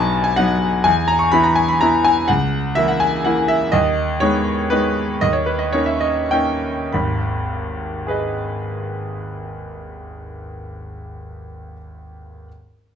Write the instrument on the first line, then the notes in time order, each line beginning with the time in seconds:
grand piano
Already playing: B1 F#3 B3 D#4 G#5 A5 B5 C#6
0.24 G#5
0.36 F#3 B3 D#4 F#5
0.84 E2 G#5
1.08 A#5
1.19 C#6
1.32 E3 B3 E4 B5
1.44 A#5
1.56 G#5
1.68 B5
1.81 E3 B3 E4 A#5
2.04 G#5
2.28 C#2 F#5
2.75 E3 A#3 E4 E5
2.88 F#5
3.00 G#5
3.25 E3 A#3 E4 F#5
3.48 E5
3.72 D#2 D#5
4.20 G#3 B3 D#4 C#5
4.70 G#3 B3 D#4 B4
5.21 D#2 D#5
5.33 C#5
5.46 B4
5.59 D#5
5.73 A#3 C#4 D#4 C#5
5.86 E5
6.01 D#5
6.31 A#3 C#4 D#4 G5
6.92 G#1 D#2 B5
8.07 G#4 B4 D#5